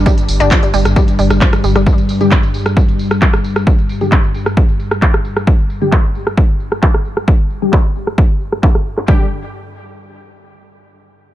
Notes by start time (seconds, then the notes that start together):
Already playing: G2
0.06 G3, kick, closed hi-hat, tambourine
0.18 closed hi-hat, tambourine
0.28 G1, open hi-hat, tambourine
0.40 G1 D3 G3 D4 G4, closed hi-hat, tambourine
0.51 F3, kick, clap, closed hi-hat, tambourine
0.63 G3, closed hi-hat, tambourine
0.74 G1 G3, open hi-hat, tambourine
0.85 G1, cross-stick, closed hi-hat, tambourine
0.96 G3, kick, closed hi-hat, tambourine
1.08 closed hi-hat, tambourine
1.19 G1 G3, open hi-hat, tambourine
1.30 G1, cross-stick, closed hi-hat, tambourine
1.41 F3, kick, clap, closed hi-hat, tambourine
1.53 cross-stick, closed hi-hat, tambourine
1.64 G1 G3, open hi-hat, tambourine
1.76 G1 G3, cross-stick, closed hi-hat, tambourine
1.86 kick, closed hi-hat, tambourine
1.98 closed hi-hat, tambourine
2.09 open hi-hat, tambourine
2.21 D3 G3 G4, closed hi-hat, tambourine
2.31 kick, clap, closed hi-hat, tambourine
2.43 closed hi-hat, tambourine
2.54 open hi-hat, tambourine
2.66 cross-stick, closed hi-hat, tambourine
2.77 kick, closed hi-hat, tambourine
2.88 closed hi-hat, tambourine
2.99 open hi-hat, tambourine
3.11 cross-stick, closed hi-hat, tambourine
3.22 kick, clap, closed hi-hat, tambourine
3.33 cross-stick, closed hi-hat, tambourine
3.44 open hi-hat, tambourine
3.56 cross-stick, closed hi-hat, tambourine
3.67 kick, closed hi-hat, tambourine
3.79 closed hi-hat, tambourine
3.89 open hi-hat, tambourine
4.01 D3 G3 G4, closed hi-hat, tambourine
4.12 kick, clap, tambourine
4.24 closed hi-hat, tambourine
4.34 open hi-hat, tambourine
4.46 cross-stick, closed hi-hat, tambourine
4.57 kick, tambourine
4.69 closed hi-hat, tambourine
4.80 open hi-hat, tambourine
4.91 cross-stick, closed hi-hat, tambourine
5.02 kick, clap, tambourine
5.14 cross-stick, closed hi-hat, tambourine
5.25 open hi-hat, tambourine
5.37 cross-stick, closed hi-hat, tambourine
5.47 kick, tambourine
5.59 closed hi-hat
5.70 open hi-hat, tambourine
5.81 D3 G3 G4, closed hi-hat, tambourine
5.92 kick, clap, tambourine
6.04 closed hi-hat, tambourine
6.15 open hi-hat, tambourine
6.27 cross-stick, closed hi-hat, tambourine
6.37 kick, tambourine
6.49 closed hi-hat, tambourine
6.60 open hi-hat, tambourine
6.72 cross-stick, closed hi-hat, tambourine
6.83 kick, clap, tambourine
6.94 cross-stick, closed hi-hat, tambourine
7.05 open hi-hat, tambourine
7.17 cross-stick, closed hi-hat, tambourine
7.28 kick, tambourine
7.39 closed hi-hat, tambourine
7.50 open hi-hat, tambourine
7.62 D3 G3 G4, closed hi-hat, tambourine
7.73 kick, clap
7.85 closed hi-hat, tambourine
7.95 open hi-hat, tambourine
8.07 cross-stick, closed hi-hat, tambourine
8.18 kick
8.30 closed hi-hat, tambourine
8.41 open hi-hat, tambourine
8.52 cross-stick, closed hi-hat, tambourine
8.63 kick, clap
8.75 cross-stick, tambourine
8.86 open hi-hat, tambourine
8.97 cross-stick, clap, closed hi-hat, tambourine
9.08 D3 G3 G4, kick